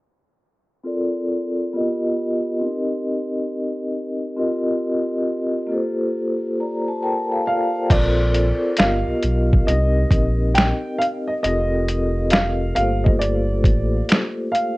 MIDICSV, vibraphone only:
0, 0, Header, 1, 2, 480
1, 0, Start_track
1, 0, Tempo, 882353
1, 460, Time_signature, 4, 2, 24, 8
1, 8037, End_track
2, 0, Start_track
2, 0, Title_t, "Vibraphone"
2, 0, Program_c, 0, 11
2, 455, Note_on_c, 0, 60, 62
2, 460, Note_on_c, 0, 65, 67
2, 466, Note_on_c, 0, 69, 59
2, 468, Note_on_c, 0, 70, 53
2, 474, Note_on_c, 0, 74, 67
2, 554, Control_c, 0, 64, 127
2, 937, Note_off_c, 0, 60, 0
2, 940, Note_off_c, 0, 65, 0
2, 942, Note_on_c, 0, 59, 67
2, 943, Note_off_c, 0, 69, 0
2, 944, Note_off_c, 0, 70, 0
2, 946, Control_c, 0, 64, 0
2, 946, Note_on_c, 0, 65, 62
2, 947, Note_off_c, 0, 74, 0
2, 951, Note_on_c, 0, 67, 67
2, 955, Note_on_c, 0, 70, 54
2, 959, Note_on_c, 0, 75, 79
2, 1038, Control_c, 0, 64, 127
2, 1408, Note_on_c, 0, 60, 64
2, 1417, Note_on_c, 0, 63, 58
2, 1418, Note_off_c, 0, 67, 0
2, 1421, Note_off_c, 0, 59, 0
2, 1423, Note_off_c, 0, 65, 0
2, 1424, Note_on_c, 0, 67, 59
2, 1426, Control_c, 0, 64, 0
2, 1427, Note_off_c, 0, 70, 0
2, 1429, Note_off_c, 0, 75, 0
2, 1435, Note_on_c, 0, 70, 60
2, 1442, Note_on_c, 0, 75, 70
2, 1508, Control_c, 0, 64, 127
2, 2355, Note_off_c, 0, 60, 0
2, 2359, Note_off_c, 0, 63, 0
2, 2363, Note_off_c, 0, 67, 0
2, 2368, Note_off_c, 0, 70, 0
2, 2372, Note_off_c, 0, 75, 0
2, 2375, Note_on_c, 0, 60, 74
2, 2378, Note_on_c, 0, 65, 68
2, 2382, Note_on_c, 0, 67, 65
2, 2386, Note_on_c, 0, 70, 67
2, 2387, Control_c, 0, 64, 0
2, 2390, Note_on_c, 0, 75, 83
2, 2495, Control_c, 0, 64, 127
2, 3083, Note_on_c, 0, 58, 57
2, 3087, Note_off_c, 0, 65, 0
2, 3093, Note_off_c, 0, 67, 0
2, 3093, Note_on_c, 0, 65, 54
2, 3097, Note_off_c, 0, 60, 0
2, 3099, Note_on_c, 0, 67, 59
2, 3103, Note_off_c, 0, 70, 0
2, 3105, Note_off_c, 0, 75, 0
2, 3106, Control_c, 0, 64, 0
2, 3110, Note_on_c, 0, 69, 59
2, 3117, Note_on_c, 0, 72, 65
2, 3200, Control_c, 0, 64, 127
2, 3567, Note_off_c, 0, 65, 0
2, 3570, Note_off_c, 0, 67, 0
2, 3575, Note_off_c, 0, 69, 0
2, 3579, Note_off_c, 0, 72, 0
2, 3590, Note_on_c, 0, 82, 55
2, 3593, Note_on_c, 0, 74, 52
2, 3732, Note_off_c, 0, 82, 0
2, 3733, Note_off_c, 0, 74, 0
2, 3742, Note_on_c, 0, 81, 66
2, 3745, Note_on_c, 0, 72, 53
2, 3816, Note_off_c, 0, 81, 0
2, 3821, Note_off_c, 0, 72, 0
2, 3822, Note_on_c, 0, 79, 68
2, 3822, Note_on_c, 0, 81, 73
2, 3826, Note_on_c, 0, 70, 62
2, 3965, Note_off_c, 0, 81, 0
2, 3967, Note_off_c, 0, 79, 0
2, 3970, Note_off_c, 0, 70, 0
2, 3979, Note_on_c, 0, 79, 55
2, 3980, Note_on_c, 0, 77, 63
2, 3985, Note_on_c, 0, 69, 49
2, 4051, Note_off_c, 0, 77, 0
2, 4056, Note_off_c, 0, 79, 0
2, 4057, Note_on_c, 0, 74, 61
2, 4057, Note_on_c, 0, 77, 71
2, 4061, Note_off_c, 0, 69, 0
2, 4061, Note_on_c, 0, 65, 49
2, 4205, Note_off_c, 0, 74, 0
2, 4207, Note_off_c, 0, 65, 0
2, 4217, Note_on_c, 0, 72, 56
2, 4270, Note_off_c, 0, 58, 0
2, 4282, Note_off_c, 0, 77, 0
2, 4292, Note_on_c, 0, 60, 57
2, 4296, Note_on_c, 0, 65, 59
2, 4299, Note_on_c, 0, 69, 60
2, 4306, Control_c, 0, 64, 0
2, 4385, Control_c, 0, 64, 127
2, 4444, Note_off_c, 0, 72, 0
2, 4765, Note_off_c, 0, 65, 0
2, 4769, Note_on_c, 0, 59, 65
2, 4771, Note_on_c, 0, 65, 55
2, 4776, Note_off_c, 0, 60, 0
2, 4779, Note_off_c, 0, 69, 0
2, 4785, Note_on_c, 0, 75, 67
2, 4787, Control_c, 0, 64, 0
2, 4865, Control_c, 0, 64, 127
2, 5252, Note_on_c, 0, 60, 63
2, 5254, Note_off_c, 0, 59, 0
2, 5255, Note_off_c, 0, 65, 0
2, 5260, Note_on_c, 0, 63, 55
2, 5262, Note_off_c, 0, 75, 0
2, 5267, Control_c, 0, 64, 0
2, 5269, Note_on_c, 0, 67, 55
2, 5278, Note_on_c, 0, 70, 55
2, 5286, Note_on_c, 0, 75, 67
2, 5371, Control_c, 0, 64, 127
2, 6196, Note_off_c, 0, 60, 0
2, 6201, Note_off_c, 0, 63, 0
2, 6205, Note_off_c, 0, 67, 0
2, 6210, Note_off_c, 0, 70, 0
2, 6214, Note_off_c, 0, 75, 0
2, 6217, Note_on_c, 0, 60, 65
2, 6223, Note_on_c, 0, 65, 57
2, 6227, Control_c, 0, 64, 0
2, 6227, Note_on_c, 0, 67, 58
2, 6232, Note_on_c, 0, 69, 49
2, 6234, Note_on_c, 0, 75, 68
2, 6266, Note_on_c, 0, 70, 59
2, 6271, Note_off_c, 0, 69, 0
2, 6314, Control_c, 0, 64, 127
2, 6932, Note_on_c, 0, 57, 44
2, 6934, Note_off_c, 0, 65, 0
2, 6938, Note_off_c, 0, 60, 0
2, 6940, Note_on_c, 0, 65, 49
2, 6941, Note_off_c, 0, 67, 0
2, 6946, Control_c, 0, 64, 0
2, 6947, Note_off_c, 0, 75, 0
2, 6948, Note_on_c, 0, 67, 52
2, 6956, Note_on_c, 0, 69, 52
2, 6963, Note_off_c, 0, 70, 0
2, 6965, Note_on_c, 0, 58, 60
2, 6966, Note_on_c, 0, 72, 60
2, 6981, Note_off_c, 0, 57, 0
2, 7033, Control_c, 0, 64, 127
2, 8037, Note_off_c, 0, 58, 0
2, 8037, Note_off_c, 0, 65, 0
2, 8037, Note_off_c, 0, 67, 0
2, 8037, Note_off_c, 0, 69, 0
2, 8037, Note_off_c, 0, 72, 0
2, 8037, End_track
0, 0, End_of_file